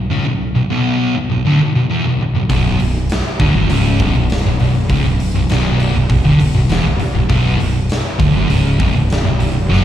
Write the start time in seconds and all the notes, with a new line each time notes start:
0.11 C#2 C#3
0.26 B1
0.55 B1
0.70 B1 B2
1.15 B1
1.30 B1
1.45 D2 D3
1.60 B1
1.75 B1
1.89 E2 E3
2.05 B1
2.20 muted distorted electric guitar stroke
2.35 B1
2.49 B0 B1 B2, kick, open hi-hat
2.80 B0 B1, open hi-hat
3.10 snare, open hi-hat
3.40 D1 D2 D3, kick, open hi-hat
3.54 F#1 F#2 F#3
3.69 C#1 C#2 C#3, open hi-hat
4.00 B0 B1 B2, kick, open hi-hat
4.14 B0 B1
4.30 snare, open hi-hat
4.45 B0 B1
4.60 B0 B1, open hi-hat
4.89 C#1 C#2 C#3, kick, open hi-hat
5.04 B0 B1
5.20 open hi-hat
5.34 B0 B1
5.49 B0 B1 B2, snare, open hi-hat
5.80 open hi-hat
5.94 B0 B1
6.09 B0 B1, kick, open hi-hat
6.24 D1 D2 D3
6.39 B0 B1, open hi-hat
6.54 B0 B1
6.69 E1 E2 E3, snare, open hi-hat
6.84 B0 B1
6.98 muted distorted electric guitar stroke, muted fingered electric bass stroke, open hi-hat
7.14 B0 B1
7.29 B0 B1 B2, kick, open hi-hat
7.58 B0 B1, open hi-hat
7.89 snare, open hi-hat
8.19 D1 D2 D3, kick, open hi-hat
8.34 F#1 F#2 F#3
8.49 C#1 C#2 C#3, open hi-hat
8.79 B0 B1 B2, kick, open hi-hat
8.94 B0 B1
9.10 snare, open hi-hat
9.24 B0 B1
9.39 B0 B1, open hi-hat
9.69 F#1 F#2 F#3, snare